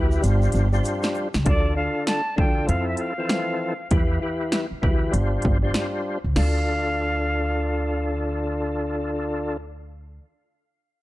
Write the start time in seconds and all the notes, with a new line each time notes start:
Already playing: D2 B2 E3 G3 E4 G4 B4
0.12 shaker
0.21 G1 C3 F3 G3 D4 F4 C5, closed hi-hat, shaker
0.42 shaker
0.52 G1, closed hi-hat, shaker
0.55 shaker
0.72 G3 D4 F4 C5, shaker
0.84 closed hi-hat, shaker
1.03 snare, shaker
1.15 shaker
1.34 C#2, snare, shaker
1.45 D2 D3 D4 F4 A4 D5, kick, closed hi-hat
1.76 D3 D4 F4 A4 F5
2.07 A5, snare, closed hi-hat
2.36 D2 D3 D4 F4 A4 G5, kick
2.67 F2 F3 C4 E4 A4 F5, closed hi-hat
2.88 E5
2.97 F5, closed hi-hat
3.18 E3 F3 C4 A4
3.29 snare, closed hi-hat
3.90 E2 E3 E4 G4 B4, kick, closed hi-hat
4.21 E3 E4 G4 B4
4.52 snare, closed hi-hat
4.71 muted upright bass stroke
4.82 D2 E3 E4 G4 B4, kick
5.11 G1 G3 D4 F4 C5, closed hi-hat
5.42 G1, kick, closed hi-hat
5.62 G3 D4 F4 C5
5.74 snare, closed hi-hat
6.24 C#2
6.36 D2 D3 D4 F4 A4 F5, snare, crash